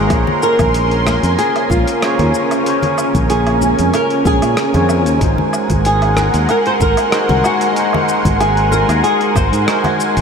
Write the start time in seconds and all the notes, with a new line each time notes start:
Already playing: G#3 D#4 F#4 G#4 A#4 C5
0.07 A#1 A#3 C#4 F4 G#4 G#5 C6, kick, closed hi-hat, cabasa, low woodblock
0.12 C5 C#5
0.27 low conga
0.43 A#4, cabasa
0.59 A#1, kick, closed hi-hat, high conga, low conga, cabasa, low woodblock
0.74 closed hi-hat, cabasa
0.91 closed hi-hat
1.07 cross-stick, high conga, cabasa, low woodblock
1.23 F2, closed hi-hat, cabasa
1.38 G#4, closed hi-hat, cabasa
1.56 closed hi-hat, low woodblock
1.70 A#1 F4, kick, high conga, cabasa
1.87 closed hi-hat, cabasa
2.00 A#3 F4 G#4 C5 C#5, cross-stick, closed hi-hat, cabasa, low woodblock
2.19 D#2, closed hi-hat, low conga
2.34 cabasa
2.51 closed hi-hat, cabasa, low woodblock
2.63 A#3 F4 G#4, closed hi-hat, cabasa
2.68 C5 C#5
2.82 closed hi-hat, low conga
2.98 cabasa, low woodblock
3.15 A#1, kick, closed hi-hat, high conga, low conga, cabasa
3.30 G#4, closed hi-hat, cabasa
3.47 closed hi-hat, low woodblock
3.62 high conga, cabasa
3.79 F2, closed hi-hat, high conga, cabasa
3.94 A#4, closed hi-hat, cabasa, low woodblock
4.10 closed hi-hat
4.25 A#1 G#4, kick, high conga, cabasa
4.42 A#2, closed hi-hat, cabasa, low woodblock
4.57 cross-stick, closed hi-hat, cabasa
4.73 F2 A#3 F4 G#4 C5 C#5, closed hi-hat, low conga
4.89 cabasa, low woodblock
5.06 D#2, closed hi-hat, cabasa
5.18 G#1 G#3 D#4 F#4 A#4 F#5 C6, kick, closed hi-hat, cabasa
5.23 A#4 C5
5.38 low conga
5.53 cabasa, low woodblock
5.70 G#1, kick, closed hi-hat, high conga, low conga, cabasa
5.85 G#4, closed hi-hat, cabasa
6.02 closed hi-hat, low woodblock
6.17 cross-stick, high conga, cabasa
6.34 D#2, closed hi-hat, cabasa
6.49 A#4, closed hi-hat, cabasa, low woodblock
6.66 C5, closed hi-hat
6.81 G#1 A#4, kick, high conga, cabasa
6.97 closed hi-hat, cabasa, low woodblock
7.11 G#3 D#4 F#4 A#4 C5, cross-stick, closed hi-hat, cabasa
7.29 C2, closed hi-hat, low conga
7.44 F#4, cabasa, low woodblock
7.61 closed hi-hat, cabasa
7.72 G#3 D#4 F#4, closed hi-hat
7.77 A#4 C5, cabasa
7.93 low conga, low woodblock
8.09 cabasa
8.25 G#1, kick, closed hi-hat, high conga, low conga, cabasa
8.40 G#4, closed hi-hat, cabasa, low woodblock
8.57 closed hi-hat
8.72 A#4, high conga, cabasa
8.89 D#2, closed hi-hat, cabasa, low woodblock
9.04 G#4, closed hi-hat, cabasa
9.21 closed hi-hat
9.35 G#1 C5, kick, high conga, cabasa, low woodblock
9.52 G#2, closed hi-hat, cabasa
9.66 G#3 D#4 F#4 A#4 C5, cross-stick, closed hi-hat, cabasa
9.84 closed hi-hat, low conga, low woodblock
10.00 cabasa
10.17 G#1, closed hi-hat, cabasa